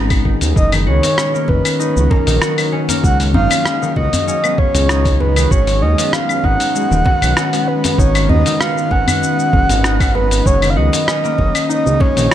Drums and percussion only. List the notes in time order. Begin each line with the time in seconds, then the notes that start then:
0.10 kick, open hi-hat, claves, shaker
0.25 kick
0.41 open hi-hat, shaker
0.56 kick, shaker
0.72 open hi-hat, djembe slap, claves, shaker
1.03 open hi-hat, djembe slap, shaker
1.18 cross-stick, shaker
1.35 shaker
1.48 kick, djembe tone
1.65 open hi-hat, claves, shaker
1.81 shaker
1.97 shaker
2.11 kick, djembe slap, djembe tone
2.27 open hi-hat, shaker
2.42 cross-stick, shaker
2.58 open hi-hat, claves, shaker
2.89 open hi-hat, djembe tone, shaker
3.04 kick, shaker
3.20 open hi-hat, djembe slap, shaker
3.34 djembe bass
3.50 open hi-hat, djembe slap, claves, shaker
3.65 cross-stick, shaker
3.83 shaker
3.96 kick, djembe tone
4.13 open hi-hat, djembe bass, shaker
4.28 djembe slap, shaker
4.44 claves, shaker
4.58 kick, djembe tone
4.75 open hi-hat, djembe tone, shaker
4.89 cross-stick, shaker
5.05 kick, open hi-hat, djembe tone, shaker
5.20 djembe tone
5.36 open hi-hat, claves, shaker
5.51 kick, shaker
5.67 open hi-hat, djembe slap, shaker
5.98 open hi-hat, djembe slap, shaker
6.13 cross-stick, shaker
6.29 claves, shaker
6.44 kick, djembe tone
6.60 open hi-hat, shaker
6.76 shaker
6.92 shaker
7.04 kick, djembe slap, djembe tone
7.22 open hi-hat, claves, shaker
7.37 cross-stick, shaker
7.53 open hi-hat, shaker
7.84 open hi-hat, djembe tone, shaker
7.98 kick, shaker
8.15 open hi-hat, djembe slap, claves, shaker
8.29 djembe bass
8.46 open hi-hat, djembe slap, shaker
8.61 cross-stick, shaker
8.78 shaker
8.91 kick, djembe tone
9.08 open hi-hat, djembe bass, claves, shaker
9.22 djembe slap, shaker
9.40 shaker
9.53 kick, djembe tone
9.69 open hi-hat, djembe tone, shaker
9.84 cross-stick, shaker
10.00 kick, open hi-hat, djembe tone, claves, shaker
10.15 djembe tone
10.31 open hi-hat, shaker
10.46 kick, shaker
10.62 open hi-hat, djembe slap, claves, shaker
10.93 open hi-hat, djembe slap, shaker
11.08 cross-stick, shaker
11.25 shaker
11.38 kick, djembe tone
11.55 open hi-hat, claves, shaker
11.71 shaker
11.87 shaker
12.00 kick, djembe slap, djembe tone
12.17 open hi-hat, shaker